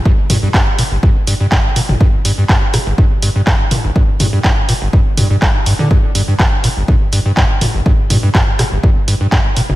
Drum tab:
HH |--o---o---o---o-|--o---o---o---o-|--o---o---o---o-|--o---o---o---o-|
CP |----x-------x---|----x-------x---|----x-------x---|----x-------x---|
SD |----------------|------r---------|----------------|----------------|
T2 |--o------------o|--------------o-|--o-------o----o|--------------o-|
BD |o---o---o---o---|o---o---o---o---|o---o---o---o---|o---o---o---o---|

HH |--o---o---o---o-|
CP |----x-x-----x---|
SD |------r---------|
T2 |--o------------o|
BD |o---o---o---o---|